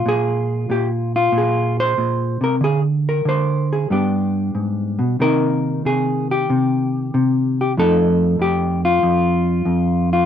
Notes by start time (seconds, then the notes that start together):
Already playing: F3 G#3 F4
0.06 A#2 G#4
0.70 A#2 G4
1.16 F4
1.32 A#2
1.38 G#4
1.80 C5
1.98 A#2
2.41 C3 A#4
2.61 D3 G#4
3.09 A#4
3.25 D3 C5
3.73 G#4
3.90 G2 G3 B3 D4 G4
4.55 G#2
4.99 B2
5.20 C3 D#3 A#3 D#4 A#4
5.85 C3 G#4
6.31 G4
6.50 C3
7.14 C3
7.61 G4
7.77 F2 F3 A3 D#4 A4
8.39 F2 G4
8.85 F4
9.03 F2
9.65 F2
10.13 F4